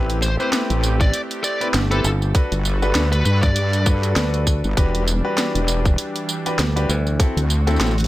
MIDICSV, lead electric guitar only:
0, 0, Header, 1, 2, 480
1, 0, Start_track
1, 0, Tempo, 606061
1, 1860, Time_signature, 4, 2, 24, 8
1, 6395, End_track
2, 0, Start_track
2, 0, Title_t, "Lead electric guitar"
2, 0, Program_c, 0, 29
2, 176, Note_on_c, 0, 72, 88
2, 266, Note_off_c, 0, 72, 0
2, 317, Note_on_c, 0, 72, 80
2, 383, Note_off_c, 0, 72, 0
2, 797, Note_on_c, 0, 74, 93
2, 945, Note_off_c, 0, 74, 0
2, 1140, Note_on_c, 0, 74, 91
2, 1311, Note_off_c, 0, 74, 0
2, 1514, Note_on_c, 0, 69, 91
2, 1664, Note_off_c, 0, 69, 0
2, 2471, Note_on_c, 0, 71, 89
2, 2556, Note_off_c, 0, 71, 0
2, 2577, Note_on_c, 0, 71, 89
2, 2688, Note_off_c, 0, 71, 0
2, 2710, Note_on_c, 0, 74, 93
2, 3056, Note_off_c, 0, 74, 0
2, 6395, End_track
0, 0, End_of_file